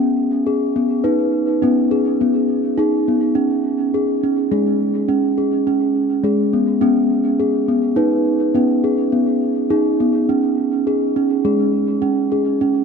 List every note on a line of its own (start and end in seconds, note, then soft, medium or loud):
0.00 0.46 B3 medium
0.00 0.86 C#4 medium
0.47 0.75 G#4 medium
0.76 1.05 B3 medium
1.04 1.62 D#4 medium
1.04 1.62 B4 medium
1.62 1.92 B3 medium
1.62 2.60 C#4 medium
1.91 2.20 G#4 medium
2.21 2.78 B3 medium
2.78 3.36 D#4 medium
2.78 3.07 G#4 medium
3.08 3.36 B3 medium
3.35 4.22 C#4 medium
3.94 4.23 G#4 medium
4.24 4.52 C#4 medium
4.51 5.09 G#3 medium
4.51 5.09 G#4 medium
5.08 5.66 C#4 medium
5.38 5.67 G#4 medium
5.67 6.25 C#4 medium
6.24 6.82 G#3 medium
6.24 6.53 G#4 medium
6.53 6.81 B3 medium
6.81 7.40 B3 medium
6.81 7.79 C#4 medium
7.40 7.69 G#4 medium
7.68 7.98 B3 medium
7.96 8.55 D#4 medium
7.96 8.55 B4 medium
8.55 8.84 B3 medium
8.55 9.53 C#4 medium
8.84 9.13 G#4 medium
9.12 9.71 B3 medium
9.70 10.29 D#4 medium
9.70 10.00 G#4 medium
10.00 10.29 B3 medium
10.29 11.15 C#4 medium
10.87 11.16 G#4 medium
11.16 11.45 C#4 medium
11.45 12.03 G#3 medium
11.45 12.03 G#4 medium
12.02 12.31 C#4 medium
12.32 12.61 G#4 medium
12.61 12.84 C#4 medium